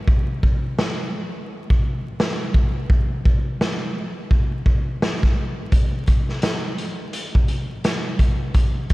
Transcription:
0.07 kick
0.43 kick
0.79 snare
1.70 kick
2.20 snare
2.54 kick
2.90 kick
3.25 kick
3.61 snare
4.31 kick
4.66 kick
5.02 snare
5.23 kick, snare
5.72 kick, closed hi-hat
6.07 kick, closed hi-hat
6.29 snare
6.42 snare, closed hi-hat
6.78 closed hi-hat
7.13 closed hi-hat
7.35 kick
7.48 closed hi-hat
7.84 snare, closed hi-hat
8.19 kick, closed hi-hat
8.54 kick, closed hi-hat
8.90 kick, closed hi-hat

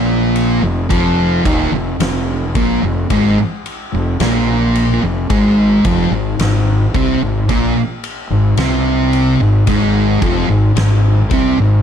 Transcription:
Already playing: A#1 A#2 A#3
0.36 ride
0.62 F1 F2
0.89 F1 F2 F3, kick, ride
1.45 D#1 D#2 D#3, kick, ride
1.72 F1 F2
2.00 F1 F2, snare, ride
2.55 A#1 A#2 A#3, kick, ride
2.82 F1 F2
3.10 G#1 G#2 G#3, kick, ride
3.66 ride
3.93 F1 F2
4.20 A#1 A#2 A#3, snare, ride
4.75 ride
5.02 F1 F2
5.30 G#1 G#2 G#3, kick, ride
5.85 F1 F2 F3, kick, ride
6.11 G#1 G#2
6.38 G#1 G#2, snare, ride
6.94 C2 C3 C4, kick, ride
7.22 G#1 G#2
7.49 A#1 A#2 A#3, kick, ride
8.04 ride
8.30 G#1 G#2
8.57 C2 C3 C4, snare, ride
9.13 ride
9.41 G#1 G#2
9.67 G#1 G#2 G#3, kick, ride
10.22 F1 F2 F3, kick, ride
10.49 G#1 G#2
10.76 G#1 G#2, snare, ride
11.30 C2 C3 C4, kick, ride
11.58 G#1 G#2

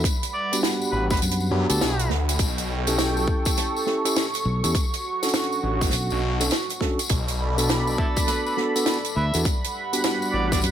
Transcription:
Already playing: B5
0.04 G3 F#5, kick, closed hi-hat, tambourine
0.23 closed hi-hat, tambourine
0.34 D5
0.52 B3 D4 F#4 G4, closed hi-hat, tambourine
0.63 snare, closed hi-hat, tambourine
0.81 tambourine
0.92 A1 B4
1.10 B4, kick, snare, closed hi-hat, tambourine
1.17 closed hi-hat
1.22 F#2, closed hi-hat, tambourine
1.31 closed hi-hat
1.40 tambourine
1.51 F#2 B3 D4 F#4 G4
1.69 D2 B3 D4 F#4 G4 A4, closed hi-hat, tambourine
1.81 B1, snare, tambourine
1.99 closed hi-hat, tambourine
2.10 D2, snare
2.29 closed hi-hat, tambourine
2.39 B1 A4 G5 C#6, kick, closed hi-hat, tambourine
2.58 closed hi-hat, tambourine
2.87 C#4 E4 G4 A4, closed hi-hat, tambourine
2.98 snare, closed hi-hat, tambourine
3.17 tambourine
3.28 kick
3.45 kick, closed hi-hat, tambourine
3.57 snare, closed hi-hat, tambourine
3.76 tambourine
3.86 C#4 E4 G4 A4, snare
4.05 C#4 E4 G4 A4, closed hi-hat, tambourine
4.16 snare, closed hi-hat, tambourine
4.34 closed hi-hat, tambourine
4.45 B1
4.64 E2 C#4 E4 G4 A4, closed hi-hat, tambourine
4.75 F#4, kick, closed hi-hat, tambourine
4.94 closed hi-hat, tambourine
5.23 C#4 D4 F#4 A4, snare, closed hi-hat, tambourine
5.28 closed hi-hat
5.34 snare, closed hi-hat, tambourine
5.43 closed hi-hat
5.52 tambourine
5.63 A1
5.81 kick, snare, closed hi-hat, tambourine
5.90 B1, snare, closed hi-hat, tambourine
6.10 B1, tambourine
6.40 C#4 D4 F#4 A4, closed hi-hat, tambourine
6.50 snare, closed hi-hat, tambourine
6.69 closed hi-hat, tambourine
6.81 C#4 D4 F#4 A4, kick, snare
6.99 closed hi-hat, tambourine
7.09 B1 A4 D5 B5, kick, closed hi-hat, tambourine
7.28 closed hi-hat, tambourine
7.58 B3 D4 F#4 A4, closed hi-hat, tambourine
7.69 snare, closed hi-hat, tambourine
7.87 tambourine
7.98 E4 A4, kick
8.16 kick, closed hi-hat, tambourine
8.28 B4, snare, closed hi-hat, tambourine
8.46 B4, tambourine
8.57 B3 D4 F#4 A4, snare
8.76 B3 D4 F#4 A4, closed hi-hat, tambourine
8.86 snare, closed hi-hat, tambourine
9.04 closed hi-hat, tambourine
9.16 D2 B4 E5
9.34 E2 B3 D4 F#4 A4, closed hi-hat, tambourine
9.45 G3 F#5 B5, kick, closed hi-hat, tambourine
9.64 closed hi-hat, tambourine
9.93 B3 D4 F#4 G4, closed hi-hat, tambourine
10.04 snare, closed hi-hat, tambourine
10.22 tambourine
10.33 A1 D5
10.52 D5, kick, snare, closed hi-hat, tambourine
10.62 F#2, closed hi-hat, tambourine

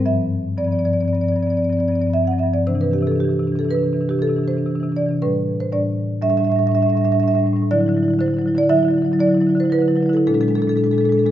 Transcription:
0.05 G2 F3 C4 E5
0.58 G2 F3 C4 D5
0.64 G2 F3 C4 D5
0.71 C4 D5
0.76 G2 F3 C4 D5
0.85 F3 C4 D5
0.92 G2 F3 C4 D5
1.00 G2 C4 D5
1.05 F3 C4 D5
1.13 G2 F3 C4 D5
1.21 G2 F3 C4 D5
1.28 F3 C4 D5
1.36 G2 C4 D5
1.42 F3 D5
1.47 G2 C4 D5
1.52 F3 C4
1.57 G2 F3 D5
1.62 C4 D5
1.69 G2 F3 C4 D5
1.77 G2 F3 C4 D5
1.84 C4
1.88 G2 F3 C4 D5
1.95 F3 D5
1.99 G2 C4 D5
2.07 G2 F3 C4
2.13 F3 C4 E5
2.22 G2 F3 C4
2.27 F#5
2.31 G2 F3 C4
2.38 C4 E5
2.43 G2 F3 C4
2.53 G2 F3 C4 D5
2.67 C3 E3 D4 C5
2.75 C3 E3 D4
2.81 C3 E3 D4 B4
2.91 C3 E3 D4 G4
2.99 C3 E3 D4
3.07 E3 D4 A4
3.11 C3
3.16 E3 D4
3.20 C3 D4 G4
3.25 E3
3.29 C3 D4
3.33 E3
3.39 C3 D4
3.43 E3
3.47 C3 D4
3.52 C3 E3 D4
3.59 E3 A4
3.64 C3 D4
3.68 E3 D4 B4
3.75 C3 E3 D4
3.83 C3 E3 D4
3.93 C3 E3 D4
4.01 C3 E3 D4
4.09 C3 E3 D4 G4
4.19 C3 E3 D4 A4
4.28 C3 E3 D4
4.36 C3 E3 D4
4.44 C3 E3 D4 C5
4.51 E3 D4
4.57 C3 D4
4.63 C3 E3
4.67 E3 D4
4.75 C3 D4
4.80 C3 E3 D4
4.89 C3 E3 D4
4.96 E3 D4 D5
5.02 C3
5.07 E3 D4
5.11 C3
5.22 A2 G3 D4 B4
5.60 C5
5.72 A2 G3 D4 D5
6.22 A2 G3 D4 E5
6.30 A2 G3 D4 E5
6.37 A2 G3 D4 E5
6.44 G3 D4 E5
6.50 A2 E5
6.55 A2 G3 D4 E5
6.63 G3 D4 E5
6.69 A2 D4
6.75 A2 G3 E5
6.81 G3 D4 E5
6.86 A2 D4 E5
6.93 A2 G3
6.97 D4 E5
7.01 A2 G3 D4 E5
7.12 A2 G3 D4 E5
7.19 G3 D4 E5
7.24 A2
7.28 G3 D4 E5
7.34 A2 G3 E5
7.39 D4
7.44 A2 G3 D4
7.53 A2 G3 D4
7.63 A2
7.71 D3 F#3 E4 D5
7.78 D3 F#3 E4
7.86 D3 F#3 E4
7.95 D3 F#3 E4
8.03 F#3 E4
8.08 D3 E4
8.13 F#3
8.19 D3 F#3 E4 C5
8.26 D3 F#3 E4
8.34 D3 E4
8.39 F#3 E4
8.46 D3 F#3 E4
8.54 D3 F#3 E4 D5
8.63 D3 E4
8.69 D3 F#3 E4 E5
8.76 D3 F#3 E4
8.83 D3 E4
8.88 F#3 E4
8.94 D3 F#3
8.98 E4
9.02 D3 F#3 E4
9.12 D3 F#3 E4
9.20 D3 F#3 E4 D5
9.27 D3 F#3 E4
9.35 D3 E4
9.41 F#3 E4
9.47 D3 F#3 E4
9.55 D3 E4
9.60 D3 F#3 C5
9.65 E4
9.70 D3 F#3 E4 B4
9.79 D3 F#3 E4
9.88 D3 F#3 E4
9.95 F#3 E4
10.00 D3 E4
10.06 D3 F#3 E4
10.13 F#3 E4 A4
10.18 D3
10.27 A#2 G#3 D4 A4
10.34 A#2 G#3 D4 A4
10.41 G#3 D4 A4
10.48 A#2 G#3 D4 A4
10.55 A#2 G#3 D4 A4
10.62 D4 A4
10.67 A#2 G#3 A4
10.71 D4
10.76 A#2 G#3 D4 A4
10.84 A#2 G#3 D4 A4
10.91 A#2 G#3 D4 A4
10.98 G#3 D4 A4
11.04 A#2 A4
11.09 G#3 D4 A4
11.15 A#2 G#3 D4
11.19 A4
11.24 A#2 G#3 D4 A4

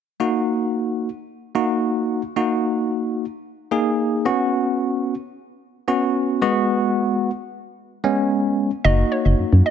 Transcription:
0.20 A#3 D#4 F#4
1.55 A#3 D#4 F#4
2.36 A#3 D#4 F#4
3.71 A#3 D#4 G#4
4.25 B3 C#4 F#4
5.88 B3 C#4 F#4
6.42 G#3 B3 F#4
8.04 G#3 B3 C#4
8.84 F#1 A#3 D#4 F#4 D#5
9.12 C#5
9.26 F#1
9.39 F#2
9.53 F#2
9.66 D#5

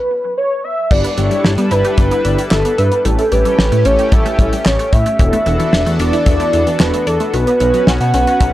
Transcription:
Already playing: B4
0.38 C#5
0.64 E5
0.91 G1 G3 D4 E4 G4 A4 B4 D5, kick, crash
1.04 B3, closed hi-hat
1.18 G1 G3 D4 E4 G4 C#5, closed hi-hat
1.31 G3, closed hi-hat
1.44 G1 E4, snare
1.58 G2 B3, closed hi-hat
1.71 G1 D4 E4 G4 B4, closed hi-hat
1.85 G4, closed hi-hat
1.98 G1 G3, kick, closed hi-hat
2.11 B3, closed hi-hat
2.25 G1 G3, closed hi-hat
2.38 G3, closed hi-hat
2.51 G1 E4 A4, snare, clap
2.65 B3, closed hi-hat
2.78 G2 B4 E5, closed hi-hat
2.92 B3, closed hi-hat
3.05 A1 G3 A3 C#4 E4 G4 A4, closed hi-hat
3.19 A3, closed hi-hat
3.32 A1 G3 C#4 E4 G4 A4 B4, closed hi-hat
3.45 G3, closed hi-hat
3.59 A1 C#4, snare
3.72 A2 A3, closed hi-hat
3.85 A1 C#4 E4 G4 A4 C#5, closed hi-hat
3.99 G4, closed hi-hat
4.12 A1 G3 E5, kick, closed hi-hat
4.26 A3, closed hi-hat
4.39 A1 G3, kick, closed hi-hat
4.53 G3, closed hi-hat
4.66 A1 C#4 C#5, snare, clap
4.79 A3, closed hi-hat
4.93 A2 C#5 E5, kick, closed hi-hat
5.06 A3, closed hi-hat
5.19 E1 E3 B3 D4 E4 F#4 A4, kick, closed hi-hat
5.33 A3, closed hi-hat
5.46 E1 E3 B3 D4 E4 A4, closed hi-hat
5.60 E3, closed hi-hat
5.73 E1 D4, snare
5.86 E2 A3, closed hi-hat
6.00 E1 B3 D4 E4 A4 D5, closed hi-hat
6.13 E4, closed hi-hat
6.26 E1 E3, kick, closed hi-hat
6.40 A3, closed hi-hat
6.53 E1 E3, closed hi-hat
6.67 E3, closed hi-hat
6.80 E1 D4 B4, snare, clap
6.94 A3, closed hi-hat
7.07 E2 A4 D5, closed hi-hat
7.20 A3, closed hi-hat
7.33 B1 F#3 B3 C#4 F#4 B4, closed hi-hat
7.47 B3, closed hi-hat
7.60 B1 F#3 B3 C#4 F#4 B4, closed hi-hat
7.74 F#3, closed hi-hat
7.87 B1 C#4 F#5, snare
8.01 B2 B3, closed hi-hat
8.14 B1 B3 C#4 F#4 B4, closed hi-hat
8.27 F#4, closed hi-hat
8.40 B1 F#3, kick, closed hi-hat

